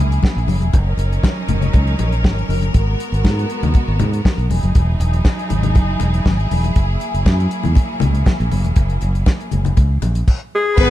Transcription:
Already playing: F#3 A#3 E4 G#4
0.00 C#2
0.12 closed hi-hat
0.23 kick, snare, high conga
0.37 A#1, closed hi-hat
0.47 F#1, open hi-hat, high conga
0.61 E1, closed hi-hat, high conga
0.72 F#1 F#3 C#4 D#4 A#4, kick, closed hi-hat, muted conga
0.97 F#1, closed hi-hat, muted conga
1.12 closed hi-hat
1.23 kick, snare, high conga
1.48 F#1, closed hi-hat, low conga
1.62 closed hi-hat, low conga
1.73 C#2, kick, closed hi-hat, muted conga
1.87 closed hi-hat
1.99 A#1, closed hi-hat, muted conga
2.12 closed hi-hat
2.24 G#1, kick, snare, high conga
2.39 closed hi-hat
2.49 F#1, open hi-hat, high conga
2.62 closed hi-hat, high conga
2.74 G#1 G#3 B3 F#4, kick, closed hi-hat, muted conga
3.00 closed hi-hat
3.12 G#1, closed hi-hat
3.24 G#2, kick, snare, high conga
3.39 closed hi-hat
3.50 closed hi-hat
3.63 D#2, closed hi-hat, low conga
3.74 kick, closed hi-hat, muted conga
3.88 G#1
4.00 G#2, closed hi-hat, muted conga, low conga
4.13 closed hi-hat
4.25 kick, snare, high conga
4.38 B1, closed hi-hat
4.50 E1 F#3 D#4 E4 G#4, open hi-hat, high conga
4.63 F#1, closed hi-hat, high conga
4.75 E1, kick, closed hi-hat, muted conga
5.00 E1, closed hi-hat
5.13 closed hi-hat
5.25 kick, snare, high conga
5.39 closed hi-hat
5.50 G#1, closed hi-hat, low conga
5.63 closed hi-hat, low conga
5.75 F#1, kick, closed hi-hat, muted conga
6.00 E1, closed hi-hat, muted conga
6.14 closed hi-hat
6.26 G#1, kick, snare, high conga
6.40 closed hi-hat
6.51 E1, open hi-hat, high conga
6.64 closed hi-hat, high conga
6.76 F#1 F#3 A#3, kick, closed hi-hat, muted conga
7.00 closed hi-hat, muted conga
7.14 F#1, closed hi-hat
7.26 F#2, kick, snare, high conga
7.40 closed hi-hat
7.51 closed hi-hat
7.63 E2, closed hi-hat, low conga
7.75 kick, closed hi-hat, muted conga
8.00 C#2, closed hi-hat, muted conga, low conga
8.14 closed hi-hat
8.26 kick, snare, high conga
8.40 A#1, closed hi-hat
8.51 F#1, open hi-hat, high conga
8.64 E1, closed hi-hat, high conga
8.76 F#1, kick, closed hi-hat, muted conga
8.89 closed hi-hat
9.01 F#1, closed hi-hat, muted conga
9.15 closed hi-hat
9.26 kick, snare, high conga
9.40 closed hi-hat
9.51 F#1, closed hi-hat, low conga
9.65 closed hi-hat, low conga
9.77 C#2, kick, closed hi-hat, muted conga
10.02 A#1, closed hi-hat, muted conga
10.15 closed hi-hat
10.28 kick, crash
10.55 G#4
10.77 G#1 F#3 B3 G#4 B4, kick, crash, muted conga

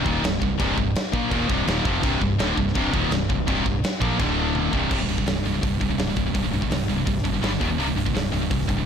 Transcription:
0.04 D#1 D#2 A#2 D#3, kick
0.22 C1 C2 G2, snare, crash
0.40 C1 C2 G2, kick
0.58 C1 C2 G2 C3, kick, crash
0.76 C1 C2 G2, kick
0.95 snare, crash
1.12 A#1 A#2 F3 A#3, kick
1.30 D#1 D#2 A#2 D#3, kick, crash
1.48 C1 C2 G2 C3, kick
1.66 D#1 D#2 A#2 D#3, snare, crash
1.85 F1 F2 C3 F3, kick
2.02 C1 C2 G2 C3, kick, crash
2.20 C1 C2 G2, kick
2.38 D1 D2 A2 D3, snare, crash
2.57 C1 C2 G2, kick
2.67 snare
2.74 C1 C2 G2 C3, kick, crash
2.93 D#1 D#2 A#2 D#3, kick
3.11 C1 C2 G2, snare, crash
3.29 C1 C2 G2, kick
3.47 C1 C2 G2 C3, kick, crash
3.65 C1 C2 G2, kick
3.84 snare, crash
4.01 A#1 A#2 F3 A#3, kick
4.19 D1 D2 A2 D3, kick, crash
4.55 high tom
4.72 C1 C2 G2 C3, kick
4.90 C1 C2 G2 C3, kick, crash
4.99 C2 G2
5.08 C1 C2 G2, open hi-hat
5.17 C2 G2, kick
5.26 C1 C2 G2, snare, open hi-hat
5.44 C1 C2 G2, open hi-hat
5.53 C2 G2
5.61 C1 C2 G2, kick, open hi-hat
5.80 C1 C2 G2, kick, open hi-hat
5.89 C2 G2
5.98 C1 C2 G2, snare, open hi-hat
6.07 C2 G2
6.16 C1 C2 G2, kick, open hi-hat
6.26 C2 G2
6.34 C1 C2 G2, kick, open hi-hat
6.43 C2 G2
6.52 C1 C2 G2, open hi-hat
6.61 C2 G2, kick
6.70 C1 C2 G2, snare, open hi-hat
6.88 C1 C2 G2, open hi-hat
6.96 C2 G2
7.05 C1 C2 G2, kick, open hi-hat
7.18 snare
7.24 F#1 C2 G2, kick, open hi-hat
7.33 C2 G2
7.41 G1 G2 D3 G3, snare, open hi-hat
7.51 G2 D3
7.60 D#1 D#2 A#2 D#3, kick, open hi-hat
7.69 D#2 A#2
7.78 C1 C2 G2 C3, open hi-hat
7.87 C2 G2
7.96 C1 C2 G2, open hi-hat
8.05 C2 G2, kick
8.14 C1 C2 G2, snare, open hi-hat
8.32 C1 C2 G2, open hi-hat
8.41 C2 G2
8.50 C1 C2 G2, kick, open hi-hat
8.61 snare
8.68 C1 C2 G2, kick, open hi-hat
8.77 C2 G2

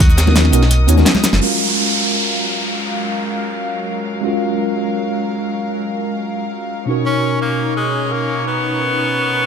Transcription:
Already playing: D#2 F#4 A#4 D#5 D#6
0.00 kick, closed hi-hat
0.09 closed hi-hat, shaker
0.17 snare, closed hi-hat, shaker
0.26 B3 C#4 D#4 F#4 A#4, snare, high conga
0.35 snare, closed hi-hat
0.45 snare
0.52 B1 B3 C#4 D#4 F#4 A#4, closed hi-hat, shaker
0.63 snare
0.71 closed hi-hat
0.87 D#2 B3 C#4 D#4 F#4 C#5, closed hi-hat, shaker
0.96 B3 C#4 D#4 F#4 A#4, snare, high conga, shaker
1.05 snare, closed hi-hat
1.15 snare, high conga
1.23 snare, closed hi-hat, shaker
1.33 F#1, snare
1.39 F#3 G#3 C#4 F4 F#4 A#4 F5, downlifter
1.44 A#4
4.21 G#3 C#4 F4 F#4
4.26 A#4
6.86 B2 C#4 D#4 F#4 A#4 C#5
6.91 A#4
7.06 C#4
7.42 A#3
7.77 G#3
8.12 A#3
8.47 B3

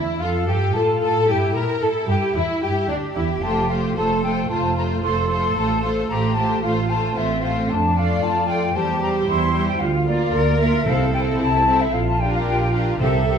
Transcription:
Already playing: E2 E4 E5
0.19 F2 F4 A4 F5
0.47 G2 G4 G5
0.74 A2 F4 A4 A5
1.01 A2 A4 A5
1.27 G2 E4 G4 G5
1.54 A#2 A#4 A#5
1.80 A2 E4 A4 A5
2.08 G2 G4 G5
2.35 E2 E4 E5
2.62 G2 G4 G5
2.88 D2 D4 G4 D5
3.14 E2 E4 E5
3.42 F1 A3 F4 C5 A5
3.68 A3 F4 C5 F5
3.96 F1 A3 F4 A4 C5 A5
4.23 A3 F4 C5 G5
4.49 F1 A3 F4 C5 A5
4.76 A3 F4 C5 A#5
5.03 F1 A3 F4 A4 C5 C6
5.29 A3 F4 C5 C6
5.56 A1 A3 F4 C5 A5
5.82 A3 F4 C5 C6
6.09 A1 A3 F4 G4 C5 A#5
6.35 A3 F4 C5 A5
6.63 A1 A3 F4 C5 F5
6.88 A3 F4 C5 A5
7.15 A1 A3 C4 F4 C5 E5
7.42 A3 F4 C5 F5
7.69 F2 D4 A5
7.95 A3 F4 D5 F5
8.22 F2 F4 A5
8.48 A3 F4 D5 G5
8.75 E2 G3 G4 C5 A5
9.01 G3 G4 C5 A#5
9.28 E2 E4 C6
9.54 G3 G4 C5
9.67 G5
9.80 D2 F4 F5
10.06 A#3 F4 A#4 D5
10.33 D2 A#4
10.59 A#3 F4 A#4 E5
10.86 C2 C3 C4 E4 A4 F5
11.12 C4 E4 A4 G5
11.40 C2 E4 A5
11.67 C4 E4 A4
11.81 E5
11.93 A#1 F4 F5
12.07 A5
12.20 D4 G4 A#4 G5
12.34 F5
12.47 A#1 G5
12.61 G5
12.72 D4 G4 A#4 F5
13.00 C2 C3 C4 G4 A4 A#4 E5
13.27 C4 G4 A#4

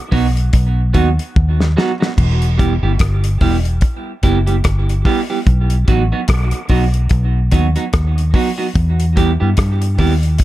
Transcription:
0.11 B1 F#3 B3 D#4 F#4, kick, open hi-hat
0.37 closed hi-hat
0.53 B1, kick, closed hi-hat
0.93 D#2 F#3 B3 D#4 F#4, kick, closed hi-hat
1.19 closed hi-hat
1.36 D#2, kick
1.60 snare
1.76 F#3 B3 D#4 F#4, snare
2.00 F#3 B3 D#4 F#4, snare
2.18 E1, kick, crash
2.42 closed hi-hat
2.58 G3 B3 E4 G4, kick, closed hi-hat
2.83 G1 G3 B3 E4 G4
2.99 G1, kick, cross-stick, closed hi-hat
3.24 closed hi-hat
3.41 E1 G3 B3 E4 G4, kick, open hi-hat
3.65 closed hi-hat
3.81 kick, closed hi-hat
4.23 F#1 G3 B3 E4 G4, kick, closed hi-hat
4.47 G3 B3 E4 G4, closed hi-hat
4.64 G1, kick, cross-stick, closed hi-hat
4.89 closed hi-hat
5.05 G3 B3 E4 G4, kick, open hi-hat
5.30 G3 B3 E4 G4
5.47 B1, kick, closed hi-hat
5.70 closed hi-hat
5.88 A1 F#3 B3 D#4 F#4, kick, closed hi-hat
6.12 F#3 B3 D#4 F#4
6.28 B1, kick, cross-stick, closed hi-hat
6.51 closed hi-hat
6.69 B1 F#3 B3 D#4 F#4, kick, open hi-hat
6.94 closed hi-hat
7.09 B1, kick, closed hi-hat
7.52 D#2 F#3 B3 D#4 F#4, kick, closed hi-hat
7.76 F#3 B3 D#4 F#4, closed hi-hat
7.93 D#2, kick, cross-stick, closed hi-hat
8.18 closed hi-hat
8.34 F#3 B3 D#4 F#4, kick, open hi-hat
8.58 F#3 B3 D#4 F#4
8.76 E2, kick, closed hi-hat
9.00 closed hi-hat
9.16 G3 B3 E4 G4, kick, closed hi-hat
9.40 G2 G3 B3 E4 G4
9.57 G2, kick, cross-stick, closed hi-hat
9.82 closed hi-hat
9.98 D#2 G3 B3 E4 G4, kick, open hi-hat
10.23 closed hi-hat
10.38 kick, closed hi-hat

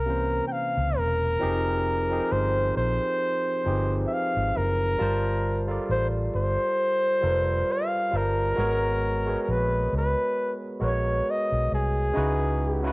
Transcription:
Already playing: C2 A#4
0.06 C3 E3 A#3 C#4
0.10 C5
0.47 G5
0.52 F5
0.77 C#2
0.97 E1 A#4
1.39 F1 F3 C4 D#4 G4 G#4 A#4
2.09 F3 C4 D#4 G4 G#4
2.14 A4
2.20 A#4
2.32 G1 C5
2.77 A#1 C5
3.65 G1 F3 C4 D#4 G4 G#4
3.69 B4
3.76 C5
4.07 E5
4.13 F5
4.36 G#1
4.57 F#1 A#4
4.98 G1 G3 F4 A#4 C5 A5
5.67 G3 F4 A4 A#4
5.71 D5
5.89 A1 C5
6.35 G1 C5
7.21 F1 G3 F4 A4 A#4
7.26 B4
7.32 C5
7.72 F5
8.11 G1 G3 F4 A#4 A5
8.15 A#4 C5
8.56 G#1 G#3 B3 F#4 A#4
8.60 C#5
9.26 G#3 F#4 G#4 B4 C#5
9.36 D#5
9.43 A#4
9.49 A#1 B4
9.93 C#2
9.97 B4
10.80 A#1 G#3 F#4 A#4 B4 C#5
10.86 C#5
11.30 D#5
11.52 B1
11.72 C2 G#4
12.13 C#2 C#3 G#3 D#4 E4 F#4
12.18 B4
12.83 C#3 G#3 D#4 E4 F#4
12.87 B4

